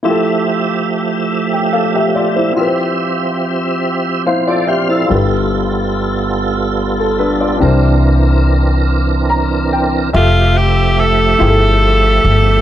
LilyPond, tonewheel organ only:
\new Staff \with { instrumentName = "Tonewheel organ" } { \time 6/8 \key f \major \tempo 4. = 48 << { r2. | r2 c''16 <a' d''>16 <g' c'' f''>16 <e' a'>16~ | <e' a'>16 r2 r8. | r2. |
r2. | } \\ { <f a g' e''>2. | <f c' f' g' e''>2. | <g b f' a'>2. | <e c' d' bes'>2. |
<f a g' e''>2. | } >> }